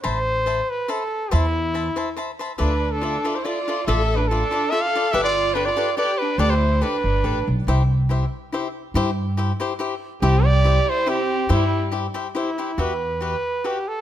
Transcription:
0.04 A1 C5 E5 A5 B5
0.46 C5 E5 A5 B5
0.70 B4
0.88 A4 C5 E5 A5 B5
1.31 E2 E4 C5 E5 A5 B5
1.74 C5 E5 A5 B5
1.96 C5 E5 A5 B5
2.17 C5 E5 A5 B5
2.39 C5 E5 A5 B5
2.58 D2 D4 F4 A4 B4 D5 E5
2.92 D4 A4
3.01 F4 A4 D5 E5
3.24 F4 A4 D5 E5
3.35 E4 C5
3.45 F4 A4 D5 E5
3.68 F4 A4 D5 E5
3.87 A1 F4 A4 D5 E5
4.16 D4 B4
4.28 D4 F4 A4 E5
4.32 D5
4.51 F4 A4 D5 E5
4.71 F4 A4 D5 E5
4.82 A4 F5
4.95 F4 A4 D5 E5
5.12 G1 G4 A4 B4 D5 E5
5.24 F4 D5
5.54 D4 G4 A4 B4 D5
5.66 F4 D5
5.77 G4 A4 B4 D5
5.97 G4 A4 B4 D5
6.19 D4 B4
6.38 D2 G4 A4 B4 D5
6.43 G4
6.50 E4 C5
6.81 D4 G4 A4 B4 D5
7.04 G1
7.24 A1 G4 A4 B4 D5
7.48 B1
7.67 C2 E4 G4 C5 E5
8.09 E4 G4 C5 E5
8.52 E4 G4 C5 E5
8.94 G2 E4 G4 C5 E5
9.37 E4 G4 C5 E5
9.60 E4 G4 C5 E5
9.79 E4 G4 C5 E5
10.22 C2 C4 E4 G4 C5 E5
10.45 G4 D5
10.64 E4 G4 C5 E5
10.88 E4 C5
11.06 C4 E4 G4 C5 E5
11.49 G2 G3 E4 G4 C5 E5
11.91 E4 G4 C5 E5
12.14 E4 G4 C5 E5
12.35 E4 G4 C5 E5
12.58 E4 G4 C5 E5
12.77 E2 F#4 G4 B4 E5
13.21 F#4 G4 B4 E5
13.64 F#4 G4 B4 E5
13.88 A4

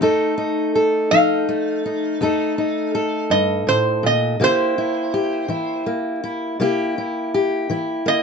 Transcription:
0.01 F2 A3 D#4 A4
0.38 D#4
0.75 A4
1.11 F3 D#4 F5
1.49 A3
1.86 D#4
2.21 F2 A3 D#4 A4
2.58 D#4
2.95 A4
3.30 G2 D#5
3.67 A2 C5
4.03 A#2 D#5
4.40 C3 A#3 E4 G4
4.44 C5
4.78 E4
5.14 G4
5.48 E3 E4
5.86 A#3
6.24 E4
6.60 C3 A#3 E4 G4
6.98 E4
7.34 G4
7.70 E3 E4
8.06 A#3 D#5

